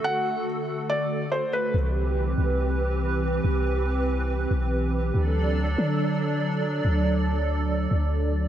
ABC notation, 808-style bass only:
X:1
M:4/4
L:1/8
Q:1/4=141
K:Clyd
V:1 name="808-style bass" clef=bass
z8 | C,,3 C,,4- C,, | C,,4- C,, B,,,3 | D,,3 D,4- D, |
D,,4- D,, D,,3 |]